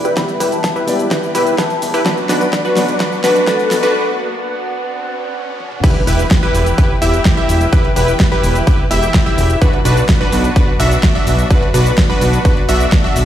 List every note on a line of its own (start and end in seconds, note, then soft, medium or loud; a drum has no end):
0.00 0.11 E1 medium
0.00 2.02 E3 medium
0.00 0.16 G3 medium
0.00 0.16 B3 medium
0.00 0.17 E4 medium
0.00 2.02 E4 medium
0.00 2.02 G4 medium
0.00 0.18 B4 medium
0.00 2.02 B4 medium
0.00 0.15 D5 medium
0.00 riser medium
0.05 0.15 E4 medium
0.05 0.15 G4 medium
0.05 0.15 B4 loud
0.05 0.15 B4 medium
0.05 closed hi-hat medium
0.05 shaker soft
0.16 0.84 G3 medium
0.16 0.85 B3 medium
0.16 0.35 E4 medium
0.16 0.85 E4 medium
0.16 0.35 G4 medium
0.16 0.35 B4 loud
0.16 0.85 B4 medium
0.16 kick loud
0.16 snare medium
0.16 closed hi-hat medium
0.16 shaker soft
0.29 closed hi-hat soft
0.29 shaker soft
0.40 0.58 E1 loud
0.40 0.58 E4 medium
0.40 0.58 G4 medium
0.40 0.58 B4 medium
0.40 0.50 E5 medium
0.40 open hi-hat loud
0.40 shaker medium
0.52 0.63 A5 medium
0.52 closed hi-hat soft
0.52 shaker soft
0.64 kick loud
0.64 snare medium
0.64 closed hi-hat medium
0.64 shaker soft
0.76 1.08 E4 medium
0.76 1.08 G4 medium
0.76 1.08 B4 loud
0.76 shaker soft
0.86 1.05 E1 loud
0.86 2.02 G3 medium
0.86 2.03 B3 medium
0.86 2.03 E4 medium
0.86 2.03 D5 medium
0.86 open hi-hat loud
0.86 shaker medium
0.99 closed hi-hat soft
0.99 shaker soft
1.11 1.29 E4 medium
1.11 1.29 G4 medium
1.11 1.29 B4 medium
1.11 kick loud
1.11 snare medium
1.11 closed hi-hat medium
1.11 shaker soft
1.23 shaker soft
1.35 1.53 E1 medium
1.35 1.56 E4 loud
1.35 1.56 G4 medium
1.35 1.56 B4 loud
1.35 open hi-hat loud
1.35 shaker medium
1.47 closed hi-hat medium
1.47 shaker soft
1.58 1.91 E4 medium
1.58 1.91 G4 medium
1.58 1.91 B4 medium
1.58 2.06 A5 medium
1.58 kick loud
1.58 snare medium
1.58 closed hi-hat medium
1.58 shaker soft
1.70 closed hi-hat soft
1.70 shaker soft
1.82 2.00 E1 medium
1.82 open hi-hat loud
1.82 shaker medium
1.94 2.04 E4 medium
1.94 2.04 G4 medium
1.94 2.04 B4 medium
1.94 2.04 B4 loud
1.94 open hi-hat medium
1.94 shaker soft
2.04 2.73 F#3 medium
2.04 2.74 B3 medium
2.04 5.80 B3 medium
2.04 2.24 D4 medium
2.04 5.80 D4 medium
2.04 2.74 D4 medium
2.04 2.24 F#4 medium
2.04 5.80 F#4 medium
2.04 2.24 B4 loud
2.04 2.74 B4 medium
2.04 kick loud
2.04 snare medium
2.04 closed hi-hat medium
2.04 shaker soft
2.18 closed hi-hat soft
2.18 shaker soft
2.29 2.47 B1 loud
2.29 2.47 D4 medium
2.29 2.47 F#4 medium
2.29 2.47 B4 medium
2.29 2.39 D5 medium
2.29 snare medium
2.29 open hi-hat loud
2.29 shaker medium
2.41 2.52 D5 medium
2.41 closed hi-hat soft
2.41 shaker soft
2.53 kick loud
2.53 snare medium
2.53 closed hi-hat medium
2.53 shaker soft
2.65 2.97 D4 medium
2.65 2.97 F#4 medium
2.65 2.97 B4 loud
2.65 shaker soft
2.75 2.94 B1 loud
2.75 3.91 F#3 medium
2.75 3.92 B3 medium
2.75 3.92 D4 medium
2.75 3.92 D5 loud
2.75 snare medium
2.75 open hi-hat loud
2.75 shaker medium
2.88 closed hi-hat soft
2.88 shaker soft
3.00 3.18 D4 medium
3.00 3.18 F#4 medium
3.00 3.18 B4 medium
3.00 kick loud
3.00 snare medium
3.00 closed hi-hat medium
3.00 shaker soft
3.12 shaker soft
3.24 3.42 B1 medium
3.24 3.45 D4 loud
3.24 3.45 F#4 medium
3.24 3.45 B4 loud
3.24 3.35 B4 medium
3.24 snare medium
3.24 open hi-hat loud
3.24 shaker medium
3.36 closed hi-hat medium
3.36 shaker soft
3.47 3.80 D4 medium
3.47 3.80 F#4 medium
3.47 3.55 A4 medium
3.47 3.80 B4 medium
3.47 3.80 B4 loud
3.47 kick loud
3.47 snare medium
3.47 closed hi-hat medium
3.47 shaker soft
3.59 3.67 A4 medium
3.59 closed hi-hat soft
3.59 shaker soft
3.71 3.89 B1 medium
3.71 3.95 A4 medium
3.71 snare medium
3.71 open hi-hat loud
3.71 shaker medium
3.83 3.93 D4 medium
3.83 3.93 F#4 medium
3.83 3.93 B4 loud
3.83 closed hi-hat soft
3.83 shaker soft
5.60 high tom medium
5.72 mid tom medium
5.84 9.58 E3 medium
5.84 9.58 E4 medium
5.84 6.02 E4 medium
5.84 9.58 G4 medium
5.84 6.02 G4 medium
5.84 9.58 B4 medium
5.84 6.02 B4 loud
5.84 kick loud
5.84 closed hi-hat medium
5.84 crash loud
5.84 impact medium
5.84 shaker soft
5.96 closed hi-hat soft
6.07 6.25 E1 loud
6.07 6.25 E4 medium
6.07 6.25 G4 medium
6.07 6.25 B4 medium
6.07 open hi-hat loud
6.07 shaker medium
6.19 closed hi-hat medium
6.19 shaker soft
6.31 kick loud
6.31 snare loud
6.31 closed hi-hat medium
6.31 shaker soft
6.43 6.75 E4 medium
6.43 6.75 G4 medium
6.43 6.75 B4 loud
6.54 6.72 E1 loud
6.54 open hi-hat loud
6.54 shaker medium
6.66 closed hi-hat medium
6.66 shaker soft
6.78 6.96 E4 medium
6.78 6.96 G4 medium
6.78 6.96 B4 medium
6.78 6.96 B4 loud
6.78 kick loud
6.78 closed hi-hat medium
6.78 shaker soft
7.02 7.19 E1 loud
7.02 7.34 E4 loud
7.02 7.34 G4 medium
7.02 7.34 E5 loud
7.02 open hi-hat loud
7.02 shaker medium
7.14 closed hi-hat medium
7.14 shaker soft
7.25 kick loud
7.25 snare loud
7.25 closed hi-hat medium
7.25 shaker soft
7.37 7.70 E4 medium
7.37 7.70 G4 medium
7.37 7.70 E5 loud
7.49 7.67 E1 medium
7.49 open hi-hat loud
7.49 shaker medium
7.61 closed hi-hat medium
7.61 shaker soft
7.73 7.91 E4 medium
7.73 7.91 G4 medium
7.73 7.91 B4 loud
7.73 kick loud
7.73 closed hi-hat medium
7.73 shaker soft
7.85 closed hi-hat soft
7.96 8.14 E1 loud
7.96 8.14 E4 medium
7.96 8.14 G4 medium
7.96 8.14 B4 medium
7.96 open hi-hat loud
7.96 shaker medium
8.08 closed hi-hat medium
8.08 shaker soft
8.20 kick loud
8.20 snare loud
8.20 closed hi-hat medium
8.20 shaker soft
8.32 8.64 E4 medium
8.32 8.64 G4 medium
8.32 8.64 B4 loud
8.44 8.61 E1 loud
8.44 open hi-hat loud
8.44 shaker medium
8.55 closed hi-hat medium
8.55 shaker soft
8.67 8.85 E4 medium
8.67 8.85 G4 medium
8.67 8.85 B4 medium
8.67 kick loud
8.67 closed hi-hat medium
8.67 shaker soft
8.91 9.08 E1 loud
8.91 9.23 E4 loud
8.91 9.23 G4 medium
8.91 9.23 E5 loud
8.91 open hi-hat loud
8.91 shaker medium
9.03 closed hi-hat medium
9.03 shaker soft
9.14 kick loud
9.14 snare loud
9.14 closed hi-hat medium
9.14 shaker soft
9.26 9.59 E4 medium
9.26 9.59 G4 medium
9.26 9.59 E5 loud
9.26 9.59 E5 medium
9.38 9.56 E1 medium
9.38 open hi-hat loud
9.38 shaker medium
9.50 closed hi-hat soft
9.50 shaker soft
9.62 13.25 F#3 medium
9.62 13.25 B3 medium
9.62 13.25 D4 medium
9.62 9.79 D4 medium
9.62 9.79 F#4 medium
9.62 9.79 B4 loud
9.62 kick loud
9.62 closed hi-hat medium
9.62 shaker soft
9.73 closed hi-hat soft
9.85 10.03 B1 loud
9.85 10.03 D4 medium
9.85 10.03 F#4 medium
9.85 10.03 B4 loud
9.85 10.03 B4 medium
9.85 open hi-hat loud
9.85 shaker medium
9.97 closed hi-hat medium
9.97 shaker soft
10.09 kick loud
10.09 snare loud
10.09 closed hi-hat medium
10.09 shaker soft
10.21 10.53 D4 loud
10.21 10.53 F#4 medium
10.21 10.53 B4 loud
10.32 10.50 B1 loud
10.32 open hi-hat loud
10.32 shaker medium
10.44 closed hi-hat soft
10.44 shaker soft
10.56 10.74 D4 medium
10.56 10.74 F#4 medium
10.56 10.74 B4 medium
10.56 kick loud
10.56 closed hi-hat medium
10.56 shaker soft
10.80 10.97 B1 loud
10.80 11.12 D4 medium
10.80 11.12 F#4 medium
10.80 11.12 E5 loud
10.80 open hi-hat loud
10.80 shaker medium
10.92 closed hi-hat soft
10.92 shaker soft
11.03 kick loud
11.03 snare loud
11.03 closed hi-hat medium
11.03 shaker soft
11.15 11.48 D4 medium
11.15 11.48 F#4 medium
11.15 11.48 E5 loud
11.27 11.45 B1 medium
11.27 open hi-hat loud
11.27 shaker medium
11.39 closed hi-hat soft
11.39 shaker soft
11.50 11.68 D4 medium
11.50 11.68 F#4 medium
11.50 11.68 B4 loud
11.50 kick loud
11.50 closed hi-hat medium
11.50 shaker soft
11.62 closed hi-hat soft
11.74 11.92 B1 loud
11.74 11.92 D4 medium
11.74 11.92 F#4 medium
11.74 11.92 B4 medium
11.74 open hi-hat loud
11.74 shaker medium
11.86 closed hi-hat medium
11.86 shaker soft
11.98 kick loud
11.98 snare loud
11.98 closed hi-hat medium
11.98 shaker soft
12.10 12.42 D4 loud
12.10 12.42 F#4 medium
12.10 12.42 B4 loud
12.21 12.39 B1 loud
12.21 open hi-hat loud
12.21 shaker medium
12.33 closed hi-hat soft
12.33 shaker soft
12.45 12.63 D4 medium
12.45 12.63 F#4 medium
12.45 12.63 B4 medium
12.45 kick loud
12.45 closed hi-hat medium
12.45 shaker soft
12.57 closed hi-hat soft
12.69 12.86 B1 loud
12.69 13.01 D4 loud
12.69 13.01 F#4 medium
12.69 13.01 E5 loud
12.69 open hi-hat loud
12.69 shaker medium
12.80 closed hi-hat medium
12.80 shaker soft
12.92 kick loud
12.92 snare loud
12.92 closed hi-hat medium
12.92 shaker soft
13.04 13.25 D4 medium
13.04 13.25 F#4 medium
13.04 13.25 E5 loud
13.16 13.25 B1 medium
13.16 open hi-hat loud
13.16 shaker medium